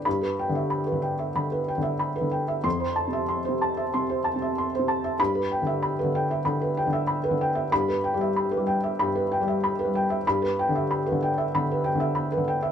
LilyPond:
<<
  \new Staff \with { instrumentName = "Felt piano" } { \time 4/4 \key g \mixolydian \tempo 4 = 94 << { b''8 r2. r8 | c'''8 r2. r8 | b''8 r2. r8 | b''8 r2. r8 |
b''8 r2. r8 | } \\ { r16 b'16 g''16 e''16 b''16 b'16 g''16 e''16 b''16 b'16 g''16 e''16 b''16 b'16 g''16 e''16 | r16 c''16 a''16 e''16 c'''16 c''16 a''16 e''16 c'''16 c''16 a''16 e''16 c'''16 c''16 a''16 e''16 | r16 b'16 g''16 e''16 b''16 b'16 g''16 e''16 b''16 b'16 g''16 e''16 b''16 b'16 g''16 e''16 | r16 b'16 g''16 e''16 b''16 b'16 g''16 e''16 b''16 b'16 g''16 e''16 b''16 b'16 g''16 e''16 |
r16 b'16 g''16 e''16 b''16 b'16 g''16 e''16 b''16 b'16 g''16 e''16 b''16 b'16 g''16 e''16 | } >> }
  \new Staff \with { instrumentName = "Felt piano" } { \clef bass \time 4/4 \key g \mixolydian \tuplet 3/2 { g,4 d8~ d8 d4 d4 d8~ d8 d4 } | \tuplet 3/2 { f,4 c8~ c8 c4 c4 c8~ c8 c4 } | \tuplet 3/2 { g,4 d8~ d8 d4 d4 d8~ d8 d4 } | \tuplet 3/2 { g,4 g8~ g8 g4 g,4 g8~ g8 g4 } |
\tuplet 3/2 { g,4 d8~ d8 d4 d4 d8~ d8 d4 } | }
>>